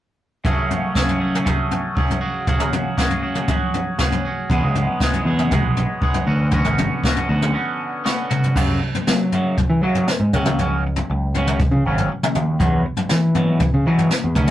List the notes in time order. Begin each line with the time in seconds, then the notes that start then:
0.44 F#2 C#3 F#3 A3 C#4 G#4, kick, floor tom
0.71 floor tom
0.95 F#2 C#3 F#3 A3 C#4 G#4, kick, snare
1.09 floor tom
1.20 F#3 A3 C#4 G#4
1.35 mid tom
1.43 F#3 A3 C#4 G#4, kick, floor tom, mid tom
1.71 floor tom
1.95 F#3 A3 C#4 G#4, kick
2.11 floor tom
2.21 C#3 F#3 C#4 F#4 G#4
2.47 C#3 F#3 C#4 F#4 G#4, kick, floor tom
2.60 mid tom
2.73 floor tom, mid tom
2.97 C#3 F#3 C#4 F#4 G#4, kick, snare
3.10 floor tom
3.23 C#4 F#4 G#4
3.35 mid tom
3.48 F#3 C#4 F#4 G#4, kick, floor tom, mid tom
3.74 floor tom
3.99 F#3 C#4 F#4 G#4, kick, snare
4.12 floor tom
4.25 C#4 F#4 G#4
4.50 E2 B2 F#3 G#3 B3 G#4, kick, floor tom
4.63 C#2
4.75 floor tom
5.00 E2 B2 F#3 G#3 B3 G#4, kick, snare
5.14 floor tom
5.25 E2 F#3 G#3 B3 G#4
5.39 mid tom
5.51 C#2 F#3 G#3 B3 G#4, kick, floor tom, mid tom
5.63 B1
5.77 floor tom
6.01 F#3 G#3 B3 G#4, kick
6.14 floor tom
6.27 D2 D3 B3 C#4 F#4
6.51 D3 B3 C#4 F#4, kick, floor tom
6.65 G#1, mid tom
6.78 floor tom, mid tom
7.04 D3 B3 C#4 F#4, kick, snare
7.16 floor tom
7.29 D2 B3 C#4 F#4
7.42 mid tom
7.53 D3 B3 C#4 F#4
8.04 D3 B3 C#4 F#4, snare
8.30 B3 C#4 F#4, mid tom
8.44 floor tom
8.56 F#2 C#3 F#3, kick, floor tom, crash
8.83 F#2 C#3
8.95 floor tom
9.07 F#2 C#3 F#3, snare
9.32 F#2 C#3 F#3, floor tom
9.58 C#3, kick, floor tom
9.70 E3
9.82 F#2 C#3 F#3
9.95 floor tom
10.08 F#2 C#3, snare
10.20 G#2
10.33 C#2 C#3 F#3 C#4, kick, mid tom
10.46 mid tom
10.59 C#3 F#3 C#4, floor tom
10.87 C#3 F#3
10.96 floor tom
11.10 C#2 C#3 F#3
11.35 C#3 F#3 C#4, floor tom
11.47 mid tom
11.59 F#3, kick, floor tom
11.71 C#3
11.85 G#1 C#3 F#3 C#4
11.98 floor tom
12.12 C#3 F#3
12.23 mid tom
12.35 D#2 C#3 F#3, mid tom
12.60 E2 B2 F#3, kick, floor tom
12.86 E2 B2
12.97 floor tom
13.09 E2 B2 E3, snare
13.35 E2 B2 F#3, floor tom
13.60 kick, floor tom
13.74 C#3
13.87 E2 B2 E3 F#3
13.98 floor tom
14.11 E2 B2, snare
14.24 E2
14.35 D2 D3 B3 C#4, kick, mid tom
14.47 mid tom